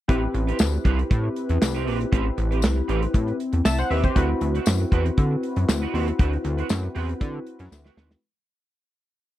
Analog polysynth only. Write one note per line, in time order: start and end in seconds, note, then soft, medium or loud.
0.08 4.11 C4 medium
0.08 4.12 E4 medium
0.08 3.36 G4 medium
0.08 3.36 B4 medium
3.65 3.78 E5 medium
3.65 3.78 A5 medium
3.78 3.90 C5 medium
3.78 3.90 F#5 medium
3.91 4.04 B4 medium
3.91 4.03 E5 medium
4.04 4.28 G4 medium
4.04 4.28 C5 medium
4.15 8.18 C4 medium
4.15 8.19 E4 medium
4.15 8.19 F#4 medium
4.15 8.19 B4 medium